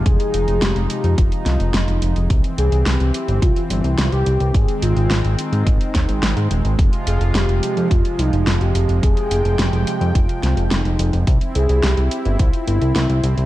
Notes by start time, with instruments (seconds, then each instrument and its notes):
Already playing: analog synth pad C3 F3 G#3
0.06 analog synth bass F1, analog synth pad D#4, soft synth lead G#4, kick, closed hi-hat
0.20 closed hi-hat
0.34 analog synth bass F1, closed hi-hat
0.48 analog synth bass F1, closed hi-hat
0.62 analog synth bass F1, soft synth lead G4, snare, closed hi-hat
0.76 analog synth bass F1, closed hi-hat
0.90 closed hi-hat
1.04 analog synth bass F2, closed hi-hat
1.18 analog synth bass F1, soft synth lead F4, kick, closed hi-hat
1.32 closed hi-hat
1.46 analog synth bass C2, snare, closed hi-hat
1.60 analog synth bass F1, closed hi-hat
1.74 analog synth bass F1, soft synth lead D#4, snare, closed hi-hat
1.88 analog synth bass F1, closed hi-hat
2.02 analog synth bass F1, closed hi-hat
2.16 analog synth bass F1, closed hi-hat
2.30 analog synth bass C2, analog synth pad E3 C4, kick, closed hi-hat
2.44 closed hi-hat
2.58 analog synth bass C2, soft synth lead G#4, closed hi-hat
2.72 analog synth bass C2, closed hi-hat
2.86 analog synth bass C2, soft synth lead G4, snare, closed hi-hat
3.00 analog synth bass C2, closed hi-hat
3.14 closed hi-hat
3.28 analog synth bass G1, closed hi-hat
3.42 analog synth bass C2, soft synth lead F4, kick, closed hi-hat
3.56 closed hi-hat
3.70 analog synth bass G1, soft synth lead E4, closed hi-hat
3.84 analog synth bass C2, closed hi-hat
3.98 analog synth bass C2, soft synth lead F4, snare, closed hi-hat
4.12 analog synth bass C2, soft synth lead G4, closed hi-hat
4.26 analog synth bass C2, closed hi-hat
4.40 analog synth bass C2, closed hi-hat
4.54 analog synth bass G#1, analog synth pad D#3 G#3 C4, soft synth lead G#4, kick, closed hi-hat
4.68 closed hi-hat
4.82 analog synth bass G#1, soft synth lead F4, closed hi-hat
4.96 analog synth bass G#1, closed hi-hat
5.11 analog synth bass G#1, snare, closed hi-hat
5.24 analog synth bass G#1, closed hi-hat
5.39 soft synth lead D#4, closed hi-hat
5.53 analog synth bass G#2, closed hi-hat
5.67 analog synth bass G#1, kick, closed hi-hat
5.81 closed hi-hat
5.95 analog synth bass D#2, kick, snare, closed hi-hat
6.09 analog synth bass G#1, closed hi-hat
6.23 analog synth bass G#1, snare, closed hi-hat
6.37 analog synth bass G#2, closed hi-hat
6.51 analog synth bass D#1, closed hi-hat
6.65 analog synth bass G#1, closed hi-hat
6.79 analog synth bass F1, analog synth pad C3 F3 F4, kick, closed hi-hat
6.93 closed hi-hat
7.07 analog synth bass F1, soft synth lead G#4, closed hi-hat
7.21 analog synth bass F1, closed hi-hat
7.35 analog synth bass F1, soft synth lead G4, snare, closed hi-hat
7.49 analog synth bass F1, closed hi-hat
7.63 closed hi-hat
7.77 analog synth bass F2, closed hi-hat
7.91 analog synth bass F1, soft synth lead F4, kick, closed hi-hat
8.05 closed hi-hat
8.19 analog synth bass C2, soft synth lead D#4, closed hi-hat
8.33 analog synth bass F1, closed hi-hat
8.47 analog synth bass F1, soft synth lead F4, snare, closed hi-hat
8.61 analog synth bass F1, soft synth lead G4, closed hi-hat
8.75 analog synth bass F1, closed hi-hat
8.89 analog synth bass F1, closed hi-hat
9.03 analog synth bass F1, soft synth lead G#4, analog synth pad G5, kick, closed hi-hat
9.17 closed hi-hat
9.31 analog synth bass F1, closed hi-hat
9.45 analog synth bass F1, closed hi-hat
9.59 analog synth bass F1, soft synth lead G4, snare, closed hi-hat
9.73 analog synth bass F1, closed hi-hat
9.87 closed hi-hat
10.01 analog synth bass F2, closed hi-hat
10.15 analog synth bass F1, soft synth lead F4, kick, closed hi-hat
10.29 closed hi-hat
10.43 analog synth bass C2, snare, closed hi-hat
10.57 analog synth bass F1, closed hi-hat
10.71 analog synth bass F1, soft synth lead D#4, snare, closed hi-hat
10.85 analog synth bass F1, closed hi-hat
10.99 analog synth bass F1, closed hi-hat
11.13 analog synth bass F1, closed hi-hat
11.27 analog synth bass C2, analog synth pad C4 E4, kick, closed hi-hat
11.41 closed hi-hat
11.55 analog synth bass C2, soft synth lead G#4, closed hi-hat
11.69 analog synth bass C2, closed hi-hat
11.83 analog synth bass C2, soft synth lead G4, snare, closed hi-hat
11.97 analog synth bass C2, closed hi-hat
12.11 closed hi-hat
12.25 analog synth bass G1, closed hi-hat
12.39 analog synth bass C2, soft synth lead F4, kick, closed hi-hat
12.53 closed hi-hat
12.67 analog synth bass G1, soft synth lead E4, closed hi-hat
12.82 analog synth bass C2, closed hi-hat
12.96 analog synth bass C2, snare, closed hi-hat
13.10 analog synth bass C2, closed hi-hat
13.24 analog synth bass C2, closed hi-hat
13.38 analog synth bass C2, closed hi-hat